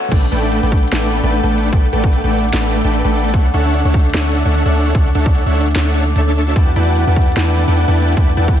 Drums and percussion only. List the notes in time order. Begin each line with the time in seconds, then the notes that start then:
0.12 kick, closed hi-hat, crash
0.32 closed hi-hat
0.52 closed hi-hat
0.72 kick, closed hi-hat
0.78 closed hi-hat
0.83 closed hi-hat
0.88 closed hi-hat
0.92 snare, closed hi-hat
1.12 closed hi-hat
1.32 closed hi-hat
1.53 open hi-hat
1.58 closed hi-hat
1.64 closed hi-hat
1.68 closed hi-hat
1.73 kick, closed hi-hat
1.93 closed hi-hat
2.04 kick
2.13 closed hi-hat
2.33 closed hi-hat
2.39 closed hi-hat
2.44 closed hi-hat
2.49 closed hi-hat
2.53 snare, closed hi-hat
2.73 closed hi-hat
2.94 closed hi-hat
3.14 open hi-hat
3.19 closed hi-hat
3.25 closed hi-hat
3.29 closed hi-hat
3.34 kick, closed hi-hat
3.54 closed hi-hat
3.74 closed hi-hat
3.94 kick, closed hi-hat
4.00 closed hi-hat
4.05 closed hi-hat
4.10 closed hi-hat
4.14 snare, closed hi-hat
4.34 closed hi-hat
4.55 closed hi-hat
4.75 open hi-hat
4.80 closed hi-hat
4.86 closed hi-hat
4.90 closed hi-hat
4.95 kick, closed hi-hat
5.15 closed hi-hat
5.26 kick
5.35 closed hi-hat
5.55 closed hi-hat
5.61 closed hi-hat
5.66 closed hi-hat
5.71 closed hi-hat
5.75 snare, closed hi-hat
5.96 closed hi-hat
6.16 closed hi-hat
6.36 open hi-hat
6.41 closed hi-hat
6.47 closed hi-hat
6.51 closed hi-hat
6.56 kick, closed hi-hat
6.76 closed hi-hat
6.96 closed hi-hat
7.16 kick, closed hi-hat
7.22 closed hi-hat
7.27 closed hi-hat
7.32 closed hi-hat
7.37 snare, closed hi-hat
7.57 closed hi-hat
7.77 closed hi-hat
7.97 open hi-hat
8.02 closed hi-hat
8.08 closed hi-hat
8.12 closed hi-hat
8.17 kick, closed hi-hat
8.37 closed hi-hat
8.48 kick